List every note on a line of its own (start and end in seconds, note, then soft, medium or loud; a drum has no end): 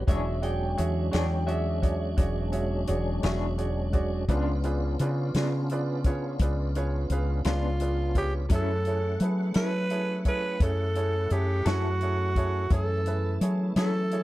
0.07 0.74 E1 medium
0.07 0.29 E3 medium
0.07 4.25 F#3 medium
0.07 4.25 G#3 medium
0.07 4.25 C#4 medium
0.07 4.25 D4 medium
0.07 0.29 D4 medium
0.07 0.34 F#4 medium
0.07 0.34 G#4 medium
0.07 0.30 G#4 medium
0.07 0.35 C#5 medium
0.07 0.30 C#5 medium
0.07 0.35 D5 medium
0.07 0.43 E5 medium
0.07 kick medium
0.07 closed hi-hat medium
0.42 0.69 F#4 medium
0.42 0.69 G#4 medium
0.42 0.69 C#5 medium
0.42 0.69 D5 medium
0.42 0.77 G5 medium
0.42 closed hi-hat soft
0.77 1.11 E2 medium
0.77 1.04 F#4 medium
0.77 1.04 G#4 medium
0.77 1.04 C#5 medium
0.77 1.05 E5 medium
0.77 closed hi-hat medium
1.11 2.15 E2 medium
1.11 1.35 E3 medium
1.11 1.34 D4 medium
1.11 1.39 F#4 medium
1.11 1.39 G#4 soft
1.11 1.34 G#4 medium
1.11 1.34 C#5 medium
1.11 1.39 C#5 soft
1.11 1.39 D5 medium
1.11 1.47 G5 medium
1.11 snare loud
1.11 closed hi-hat medium
1.47 1.74 F#4 medium
1.47 1.74 G#4 medium
1.47 1.74 C#5 medium
1.47 1.74 D5 medium
1.47 2.84 E5 medium
1.47 closed hi-hat soft
1.82 2.09 F#4 medium
1.82 2.10 G#4 soft
1.82 2.09 C#5 soft
1.82 2.10 D5 medium
1.82 kick medium
1.82 closed hi-hat medium
2.17 2.85 E1 medium
2.17 2.44 F#4 medium
2.17 2.45 G#4 soft
2.17 2.45 C#5 medium
2.17 2.45 D5 medium
2.17 kick medium
2.17 closed hi-hat medium
2.52 2.79 F#4 medium
2.52 2.79 G#4 soft
2.52 2.79 C#5 medium
2.52 2.79 E5 medium
2.52 closed hi-hat medium
2.87 3.21 E1 medium
2.87 3.15 F#4 medium
2.87 3.15 G#4 medium
2.87 3.15 C#5 medium
2.87 3.15 D5 medium
2.87 closed hi-hat medium
3.23 4.25 E1 medium
3.23 3.46 E3 medium
3.23 3.46 D4 medium
3.23 3.50 F#4 medium
3.23 3.50 G#4 soft
3.23 3.45 G#4 medium
3.23 3.50 C#5 soft
3.23 3.45 C#5 medium
3.23 3.50 E5 medium
3.23 snare medium
3.23 closed hi-hat medium
3.58 3.85 F#4 soft
3.58 3.85 G#4 soft
3.58 3.85 C#5 medium
3.58 3.85 D5 medium
3.58 closed hi-hat soft
3.93 4.20 F#4 medium
3.93 4.20 G#4 soft
3.93 4.20 C#5 soft
3.93 4.20 D5 medium
3.93 kick medium
3.93 closed hi-hat soft
4.28 4.95 C#2 medium
4.28 4.50 C#3 medium
4.28 8.46 B3 medium
4.28 4.51 B3 medium
4.28 8.46 C#4 medium
4.28 8.46 D4 medium
4.28 4.51 D4 medium
4.28 8.46 F4 medium
4.28 4.56 F4 medium
4.28 4.51 F4 medium
4.28 4.56 G#4 medium
4.28 4.56 B4 medium
4.28 4.56 D5 medium
4.28 kick medium
4.28 closed hi-hat medium
4.63 4.91 F4 medium
4.63 4.91 G#4 medium
4.63 4.91 B4 medium
4.63 4.91 D5 medium
4.63 closed hi-hat soft
4.99 5.32 C#3 medium
4.99 5.26 F4 medium
4.99 5.27 G#4 medium
4.99 5.27 B4 medium
4.99 5.27 D5 medium
4.99 closed hi-hat soft
5.34 6.36 C#3 medium
5.34 5.57 C#3 medium
5.34 5.57 B3 medium
5.34 5.57 D4 medium
5.34 5.56 F4 medium
5.34 5.62 F4 soft
5.34 5.62 G#4 soft
5.34 5.62 B4 soft
5.34 5.62 D5 soft
5.34 snare medium
5.34 closed hi-hat medium
5.69 5.97 F4 medium
5.69 5.97 G#4 medium
5.69 5.97 B4 medium
5.69 5.97 D5 medium
5.69 closed hi-hat medium
6.04 6.32 F4 medium
6.04 6.32 G#4 medium
6.04 6.32 B4 soft
6.04 6.32 C#5 medium
6.04 kick medium
6.04 closed hi-hat medium
6.39 7.06 C#2 medium
6.39 6.67 F4 soft
6.39 6.67 G#4 soft
6.39 6.67 B4 soft
6.39 6.67 D5 medium
6.39 kick medium
6.39 closed hi-hat medium
6.75 7.02 F4 medium
6.75 7.02 G#4 medium
6.75 7.02 B4 medium
6.75 7.02 C#5 medium
6.75 closed hi-hat medium
7.10 7.42 C#2 medium
7.10 7.37 F4 soft
7.10 7.37 G#4 soft
7.10 7.37 B4 medium
7.10 7.37 F5 medium
7.10 closed hi-hat medium
7.44 8.46 C#2 medium
7.44 7.67 C#3 soft
7.44 7.67 B3 medium
7.44 7.67 D4 medium
7.44 7.66 F4 medium
7.44 7.72 F4 soft
7.44 7.72 G#4 soft
7.44 7.72 B4 soft
7.44 7.72 D5 soft
7.44 snare medium
7.44 closed hi-hat medium
7.49 8.13 F4 medium
7.80 8.07 F4 soft
7.80 8.07 G#4 soft
7.80 8.07 B4 soft
7.80 8.07 D5 soft
7.80 closed hi-hat medium
8.15 8.42 F4 soft
8.15 8.33 G4 medium
8.15 8.42 G#4 soft
8.15 8.42 B4 soft
8.15 8.42 C#5 medium
8.15 kick medium
8.15 closed hi-hat medium
8.49 9.17 F#2 medium
8.49 8.71 F#3 soft
8.49 12.67 A3 medium
8.49 12.66 C#4 medium
8.49 8.71 C#4 medium
8.49 12.67 E4 medium
8.49 8.77 E4 medium
8.49 8.72 E4 medium
8.49 8.78 G#4 soft
8.49 8.72 A4 medium
8.49 8.77 A4 soft
8.49 12.67 F#5 medium
8.49 kick medium
8.49 closed hi-hat medium
8.53 9.19 A4 medium
8.53 8.78 C#5 medium
8.85 9.13 E4 soft
8.85 9.13 G#4 soft
8.85 9.13 A4 soft
8.85 9.13 C#5 soft
8.85 closed hi-hat soft
9.20 9.53 F#3 medium
9.20 9.47 E4 soft
9.20 9.48 G#4 soft
9.20 9.48 A4 soft
9.20 9.48 B4 soft
9.20 closed hi-hat medium
9.54 10.57 F#3 medium
9.54 9.77 F#3 soft
9.54 9.77 C#4 soft
9.54 9.82 E4 soft
9.54 9.77 E4 soft
9.54 9.82 G#4 soft
9.54 9.76 A4 medium
9.54 9.82 A4 soft
9.54 10.22 B4 medium
9.54 9.83 C#5 soft
9.54 snare loud
9.54 closed hi-hat medium
9.90 10.17 E4 medium
9.90 10.17 G#4 soft
9.90 10.17 A4 soft
9.90 10.17 C#5 medium
9.90 closed hi-hat medium
10.25 10.52 E4 soft
10.25 10.52 G#4 soft
10.25 10.52 A4 soft
10.25 10.65 B4 medium
10.25 10.52 C#5 medium
10.25 kick medium
10.25 closed hi-hat medium
10.60 11.27 F#2 medium
10.60 10.87 E4 soft
10.60 10.88 G#4 soft
10.60 10.87 A4 soft
10.60 11.34 A4 medium
10.60 10.88 C#5 medium
10.60 kick loud
10.60 closed hi-hat medium
10.95 11.22 E4 soft
10.95 11.22 G#4 soft
10.95 11.23 A4 soft
10.95 11.23 C#5 soft
10.95 closed hi-hat soft
11.30 11.63 F#2 medium
11.30 11.57 E4 soft
11.30 11.69 G4 medium
11.30 11.58 G#4 soft
11.30 11.58 A4 soft
11.30 11.58 C#5 medium
11.30 closed hi-hat soft
11.65 12.67 F#2 medium
11.65 11.88 F#3 medium
11.65 11.88 C#4 soft
11.65 11.87 E4 medium
11.65 11.93 E4 soft
11.65 12.72 F#4 medium
11.65 11.93 G#4 soft
11.65 11.87 A4 medium
11.65 11.93 A4 soft
11.65 11.93 C#5 soft
11.65 snare medium
11.65 closed hi-hat medium
12.01 12.28 E4 soft
12.01 12.28 G#4 soft
12.01 12.28 A4 soft
12.01 12.28 C#5 soft
12.01 closed hi-hat soft
12.36 12.63 E4 soft
12.36 12.63 G#4 soft
12.36 12.63 A4 medium
12.36 12.63 C#5 medium
12.36 kick medium
12.36 closed hi-hat soft
12.70 13.37 F#2 medium
12.70 14.23 E3 medium
12.70 14.23 A3 medium
12.70 14.23 C#4 medium
12.70 14.23 E4 medium
12.70 12.98 E4 medium
12.70 12.98 G#4 soft
12.70 12.98 A4 soft
12.70 12.98 C#5 medium
12.70 kick medium
12.70 closed hi-hat medium
12.74 13.39 A4 medium
13.06 13.33 E4 soft
13.06 13.33 G#4 soft
13.06 13.33 A4 soft
13.06 13.33 B4 soft
13.06 closed hi-hat medium
13.41 13.73 F#3 medium
13.41 13.68 E4 medium
13.41 13.68 G#4 soft
13.41 13.68 A4 soft
13.41 13.68 C#5 soft
13.41 closed hi-hat medium
13.76 14.23 F#3 medium
13.76 13.99 F#3 soft
13.76 13.99 C#4 soft
13.76 14.03 E4 soft
13.76 13.98 E4 medium
13.76 14.03 G#4 soft
13.76 14.03 A4 soft
13.76 14.23 A4 medium
13.76 13.98 A4 medium
13.76 14.03 C#5 medium
13.76 snare loud
13.76 closed hi-hat medium
14.11 14.23 E4 medium
14.11 14.23 G#4 medium
14.11 14.23 A4 soft
14.11 14.23 C#5 medium
14.11 closed hi-hat medium